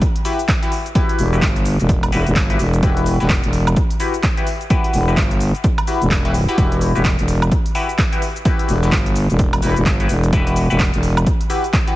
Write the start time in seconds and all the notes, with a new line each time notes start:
0.02 kick, closed hi-hat, shaker
0.16 closed hi-hat
0.25 E4 F#4 G4 B4, open hi-hat, shaker
0.39 closed hi-hat, shaker
0.48 kick, clap, closed hi-hat, shaker
0.62 E4 F#4 G4 B4, closed hi-hat
0.72 open hi-hat, shaker
0.86 closed hi-hat, shaker
0.95 E4 F#4 G4 B4, kick, closed hi-hat, shaker
1.09 closed hi-hat
1.19 E1, open hi-hat, shaker
1.33 E4 F#4 G4 B4, shaker
1.42 G1, kick, clap, closed hi-hat, shaker
1.56 closed hi-hat
1.65 open hi-hat, shaker
1.80 E1, closed hi-hat, shaker
1.89 kick, closed hi-hat, shaker
2.03 closed hi-hat, high woodblock
2.12 E1 E4 F#4 G4 B4, open hi-hat, shaker
2.27 E1, closed hi-hat, shaker
2.36 G1, kick, clap, closed hi-hat, shaker
2.50 E4 F#4 G4 B4, closed hi-hat
2.59 E1, open hi-hat, shaker
2.73 closed hi-hat, shaker
2.83 E1 E4 F#4 G4 B4, kick, closed hi-hat, shaker
2.97 closed hi-hat
3.06 open hi-hat, shaker
3.20 E1 E4 F#4 G4 B4, shaker
3.30 kick, clap, closed hi-hat, shaker
3.44 E1, closed hi-hat
3.53 open hi-hat, shaker
3.67 closed hi-hat, high woodblock, shaker
3.76 kick, closed hi-hat, shaker
3.91 closed hi-hat
4.00 E4 F#4 G4 B4, open hi-hat, shaker
4.14 closed hi-hat, shaker
4.23 kick, clap, closed hi-hat, shaker
4.37 E4 F#4 G4 B4, closed hi-hat
4.47 open hi-hat, shaker
4.61 closed hi-hat, shaker
4.70 E4 F#4 G4 B4, kick, closed hi-hat, shaker
4.84 closed hi-hat
4.94 E1, open hi-hat, shaker
5.08 E4 F#4 G4 B4, shaker
5.17 G1, kick, clap, closed hi-hat, shaker
5.31 closed hi-hat
5.40 open hi-hat, shaker
5.55 closed hi-hat, shaker
5.64 kick, closed hi-hat, shaker
5.78 closed hi-hat, high woodblock
5.87 E4 F#4 G4 B4, open hi-hat, shaker
6.02 E1, closed hi-hat, shaker
6.11 kick, clap, closed hi-hat, shaker
6.25 E4 F#4 G4 B4, closed hi-hat
6.34 open hi-hat, shaker
6.48 E4 F#4 G4 B4, closed hi-hat, shaker
6.58 E1 E4 F#4 G4 B4, kick, closed hi-hat, shaker
6.72 closed hi-hat
6.81 open hi-hat, shaker
6.95 E1 E4 F#4 G4 B4, shaker
7.05 kick, clap, closed hi-hat, shaker
7.19 E1, closed hi-hat
7.28 open hi-hat, shaker
7.42 closed hi-hat, high woodblock, shaker
7.52 kick, closed hi-hat, shaker
7.66 closed hi-hat
7.75 E4 F#4 G4 B4, open hi-hat, shaker
7.89 closed hi-hat, shaker
7.98 kick, clap, closed hi-hat, shaker
8.12 E4 F#4 G4 B4, closed hi-hat
8.22 open hi-hat, shaker
8.36 closed hi-hat, shaker
8.45 E4 F#4 G4 B4, kick, closed hi-hat, shaker
8.59 closed hi-hat
8.69 E1, open hi-hat, shaker
8.83 E4 F#4 G4 B4, shaker
8.92 G1, kick, clap, closed hi-hat, shaker
9.06 closed hi-hat
9.16 open hi-hat, shaker
9.30 E1, closed hi-hat, shaker
9.39 kick, closed hi-hat, shaker
9.53 closed hi-hat, high woodblock
9.62 E1 E4 F#4 G4 B4, open hi-hat, shaker
9.76 E1, closed hi-hat, shaker
9.86 G1, kick, clap, closed hi-hat, shaker
10.00 E4 F#4 G4 B4, closed hi-hat
10.09 E1, open hi-hat, shaker
10.23 closed hi-hat, shaker
10.33 E1 E4 F#4 G4 B4, kick, closed hi-hat, shaker
10.47 closed hi-hat
10.56 open hi-hat, shaker
10.70 E1 E4 F#4 G4 B4, shaker
10.80 kick, clap, closed hi-hat, shaker
10.94 E1, closed hi-hat
11.03 open hi-hat, shaker
11.17 closed hi-hat, high woodblock, shaker
11.27 kick, closed hi-hat, shaker
11.41 closed hi-hat
11.50 E4 F#4 G4 B4, open hi-hat, shaker
11.64 closed hi-hat, shaker
11.73 kick, clap, closed hi-hat, shaker
11.87 E4 F#4 G4 B4, closed hi-hat